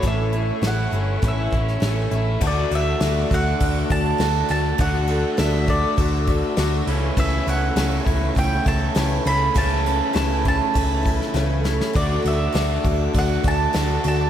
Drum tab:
CC |----------------|x-x-x-x-x-x-x-x-|x-x-x-x-x-x-x-x-|x-x-x-x-x-x-x-x-|
HH |x-x-x-x-x-x-x-x-|----------------|----------------|----------------|
SD |----o------oo---|----o-------o---|----o-------o---|----o-------o---|
BD |o-------o-o-----|o-----o-o-o-----|o-----o-o-o-----|o-----o-o-o-----|

CC |x-x-x-x-x-x-----|x-x-x-x-x-x-x-x-|
HH |----------------|----------------|
SD |----o------oo-oo|----o-------o---|
BD |o-----o-o-o-----|o-----o-o-o-----|